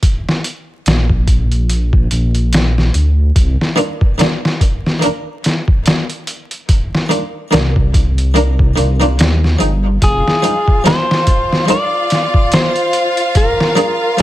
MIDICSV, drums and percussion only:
0, 0, Header, 1, 2, 480
1, 0, Start_track
1, 0, Key_signature, -3, "minor"
1, 0, Tempo, 833333
1, 12, Time_signature, 4, 2, 24, 8
1, 8191, End_track
2, 0, Start_track
2, 0, Title_t, "Drums"
2, 15, Note_on_c, 9, 36, 101
2, 15, Note_on_c, 9, 42, 82
2, 72, Note_off_c, 9, 36, 0
2, 73, Note_off_c, 9, 42, 0
2, 165, Note_on_c, 9, 38, 48
2, 222, Note_off_c, 9, 38, 0
2, 255, Note_on_c, 9, 42, 65
2, 313, Note_off_c, 9, 42, 0
2, 496, Note_on_c, 9, 42, 79
2, 506, Note_on_c, 9, 38, 104
2, 553, Note_off_c, 9, 42, 0
2, 564, Note_off_c, 9, 38, 0
2, 631, Note_on_c, 9, 36, 86
2, 689, Note_off_c, 9, 36, 0
2, 734, Note_on_c, 9, 36, 90
2, 735, Note_on_c, 9, 42, 63
2, 792, Note_off_c, 9, 36, 0
2, 792, Note_off_c, 9, 42, 0
2, 873, Note_on_c, 9, 42, 38
2, 930, Note_off_c, 9, 42, 0
2, 976, Note_on_c, 9, 42, 81
2, 1034, Note_off_c, 9, 42, 0
2, 1111, Note_on_c, 9, 36, 85
2, 1169, Note_off_c, 9, 36, 0
2, 1214, Note_on_c, 9, 42, 65
2, 1272, Note_off_c, 9, 42, 0
2, 1351, Note_on_c, 9, 42, 40
2, 1409, Note_off_c, 9, 42, 0
2, 1455, Note_on_c, 9, 42, 79
2, 1466, Note_on_c, 9, 38, 110
2, 1513, Note_off_c, 9, 42, 0
2, 1523, Note_off_c, 9, 38, 0
2, 1602, Note_on_c, 9, 38, 35
2, 1660, Note_off_c, 9, 38, 0
2, 1695, Note_on_c, 9, 42, 67
2, 1752, Note_off_c, 9, 42, 0
2, 1934, Note_on_c, 9, 36, 101
2, 1934, Note_on_c, 9, 42, 81
2, 1991, Note_off_c, 9, 36, 0
2, 1992, Note_off_c, 9, 42, 0
2, 2081, Note_on_c, 9, 38, 37
2, 2139, Note_off_c, 9, 38, 0
2, 2174, Note_on_c, 9, 42, 64
2, 2231, Note_off_c, 9, 42, 0
2, 2311, Note_on_c, 9, 36, 88
2, 2368, Note_off_c, 9, 36, 0
2, 2415, Note_on_c, 9, 42, 77
2, 2425, Note_on_c, 9, 38, 102
2, 2472, Note_off_c, 9, 42, 0
2, 2483, Note_off_c, 9, 38, 0
2, 2564, Note_on_c, 9, 38, 54
2, 2622, Note_off_c, 9, 38, 0
2, 2654, Note_on_c, 9, 36, 93
2, 2656, Note_on_c, 9, 42, 62
2, 2711, Note_off_c, 9, 36, 0
2, 2714, Note_off_c, 9, 42, 0
2, 2802, Note_on_c, 9, 38, 39
2, 2860, Note_off_c, 9, 38, 0
2, 2892, Note_on_c, 9, 42, 85
2, 2950, Note_off_c, 9, 42, 0
2, 3134, Note_on_c, 9, 42, 65
2, 3144, Note_on_c, 9, 38, 42
2, 3192, Note_off_c, 9, 42, 0
2, 3202, Note_off_c, 9, 38, 0
2, 3270, Note_on_c, 9, 36, 90
2, 3328, Note_off_c, 9, 36, 0
2, 3373, Note_on_c, 9, 42, 80
2, 3384, Note_on_c, 9, 38, 109
2, 3431, Note_off_c, 9, 42, 0
2, 3441, Note_off_c, 9, 38, 0
2, 3511, Note_on_c, 9, 42, 38
2, 3569, Note_off_c, 9, 42, 0
2, 3613, Note_on_c, 9, 42, 67
2, 3671, Note_off_c, 9, 42, 0
2, 3750, Note_on_c, 9, 42, 42
2, 3808, Note_off_c, 9, 42, 0
2, 3852, Note_on_c, 9, 42, 86
2, 3853, Note_on_c, 9, 36, 109
2, 3910, Note_off_c, 9, 36, 0
2, 3910, Note_off_c, 9, 42, 0
2, 4001, Note_on_c, 9, 38, 47
2, 4058, Note_off_c, 9, 38, 0
2, 4095, Note_on_c, 9, 42, 62
2, 4152, Note_off_c, 9, 42, 0
2, 4334, Note_on_c, 9, 42, 81
2, 4344, Note_on_c, 9, 38, 101
2, 4391, Note_off_c, 9, 42, 0
2, 4402, Note_off_c, 9, 38, 0
2, 4470, Note_on_c, 9, 36, 86
2, 4528, Note_off_c, 9, 36, 0
2, 4573, Note_on_c, 9, 36, 94
2, 4575, Note_on_c, 9, 42, 65
2, 4631, Note_off_c, 9, 36, 0
2, 4633, Note_off_c, 9, 42, 0
2, 4712, Note_on_c, 9, 42, 39
2, 4770, Note_off_c, 9, 42, 0
2, 4814, Note_on_c, 9, 42, 87
2, 4872, Note_off_c, 9, 42, 0
2, 4950, Note_on_c, 9, 36, 89
2, 5007, Note_off_c, 9, 36, 0
2, 5053, Note_on_c, 9, 42, 67
2, 5111, Note_off_c, 9, 42, 0
2, 5190, Note_on_c, 9, 42, 41
2, 5248, Note_off_c, 9, 42, 0
2, 5292, Note_on_c, 9, 42, 76
2, 5303, Note_on_c, 9, 38, 105
2, 5350, Note_off_c, 9, 42, 0
2, 5360, Note_off_c, 9, 38, 0
2, 5439, Note_on_c, 9, 38, 36
2, 5497, Note_off_c, 9, 38, 0
2, 5531, Note_on_c, 9, 42, 66
2, 5588, Note_off_c, 9, 42, 0
2, 5771, Note_on_c, 9, 42, 82
2, 5772, Note_on_c, 9, 36, 106
2, 5829, Note_off_c, 9, 36, 0
2, 5829, Note_off_c, 9, 42, 0
2, 5919, Note_on_c, 9, 38, 36
2, 5977, Note_off_c, 9, 38, 0
2, 6012, Note_on_c, 9, 42, 67
2, 6070, Note_off_c, 9, 42, 0
2, 6149, Note_on_c, 9, 36, 91
2, 6207, Note_off_c, 9, 36, 0
2, 6253, Note_on_c, 9, 42, 75
2, 6263, Note_on_c, 9, 38, 106
2, 6310, Note_off_c, 9, 42, 0
2, 6321, Note_off_c, 9, 38, 0
2, 6400, Note_on_c, 9, 38, 55
2, 6458, Note_off_c, 9, 38, 0
2, 6490, Note_on_c, 9, 42, 67
2, 6491, Note_on_c, 9, 36, 93
2, 6548, Note_off_c, 9, 42, 0
2, 6549, Note_off_c, 9, 36, 0
2, 6639, Note_on_c, 9, 38, 38
2, 6696, Note_off_c, 9, 38, 0
2, 6730, Note_on_c, 9, 42, 82
2, 6787, Note_off_c, 9, 42, 0
2, 6971, Note_on_c, 9, 42, 65
2, 6981, Note_on_c, 9, 38, 44
2, 7028, Note_off_c, 9, 42, 0
2, 7039, Note_off_c, 9, 38, 0
2, 7108, Note_on_c, 9, 36, 93
2, 7165, Note_off_c, 9, 36, 0
2, 7210, Note_on_c, 9, 42, 80
2, 7220, Note_on_c, 9, 38, 110
2, 7267, Note_off_c, 9, 42, 0
2, 7278, Note_off_c, 9, 38, 0
2, 7347, Note_on_c, 9, 42, 42
2, 7405, Note_off_c, 9, 42, 0
2, 7448, Note_on_c, 9, 42, 66
2, 7506, Note_off_c, 9, 42, 0
2, 7587, Note_on_c, 9, 42, 42
2, 7644, Note_off_c, 9, 42, 0
2, 7690, Note_on_c, 9, 36, 110
2, 7690, Note_on_c, 9, 42, 90
2, 7747, Note_off_c, 9, 42, 0
2, 7748, Note_off_c, 9, 36, 0
2, 7836, Note_on_c, 9, 38, 46
2, 7894, Note_off_c, 9, 38, 0
2, 7930, Note_on_c, 9, 42, 69
2, 7988, Note_off_c, 9, 42, 0
2, 8170, Note_on_c, 9, 42, 81
2, 8191, Note_off_c, 9, 42, 0
2, 8191, End_track
0, 0, End_of_file